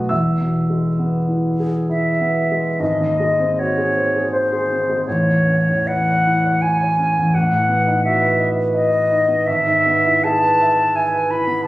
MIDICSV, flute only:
0, 0, Header, 1, 2, 480
1, 0, Start_track
1, 0, Key_signature, 4, "major"
1, 0, Tempo, 900901
1, 52, Time_signature, 3, 2, 24, 8
1, 1492, Tempo, 787402
1, 1972, Tempo, 737101
1, 2932, Tempo, 814111
1, 3412, Tempo, 748130
1, 3892, Tempo, 705882
1, 5332, Tempo, 722892
1, 5812, Tempo, 784314
1, 6292, Tempo, 700117
1, 7268, End_track
2, 0, Start_track
2, 0, Title_t, "Flute"
2, 0, Program_c, 0, 73
2, 1011, Note_on_c, 0, 76, 50
2, 1493, Note_on_c, 0, 75, 63
2, 1502, Note_off_c, 0, 76, 0
2, 1974, Note_on_c, 0, 73, 61
2, 1984, Note_off_c, 0, 75, 0
2, 2443, Note_off_c, 0, 73, 0
2, 2447, Note_on_c, 0, 72, 59
2, 2920, Note_off_c, 0, 72, 0
2, 2930, Note_on_c, 0, 73, 65
2, 3410, Note_on_c, 0, 78, 74
2, 3420, Note_off_c, 0, 73, 0
2, 3888, Note_on_c, 0, 80, 61
2, 3898, Note_off_c, 0, 78, 0
2, 4381, Note_on_c, 0, 78, 62
2, 4391, Note_off_c, 0, 80, 0
2, 4854, Note_off_c, 0, 78, 0
2, 4858, Note_on_c, 0, 76, 72
2, 5160, Note_off_c, 0, 76, 0
2, 5337, Note_on_c, 0, 75, 71
2, 5811, Note_on_c, 0, 76, 85
2, 5820, Note_off_c, 0, 75, 0
2, 6286, Note_on_c, 0, 81, 91
2, 6295, Note_off_c, 0, 76, 0
2, 6777, Note_on_c, 0, 80, 72
2, 6787, Note_off_c, 0, 81, 0
2, 7017, Note_on_c, 0, 83, 84
2, 7027, Note_off_c, 0, 80, 0
2, 7243, Note_off_c, 0, 83, 0
2, 7247, Note_on_c, 0, 81, 104
2, 7268, Note_off_c, 0, 81, 0
2, 7268, End_track
0, 0, End_of_file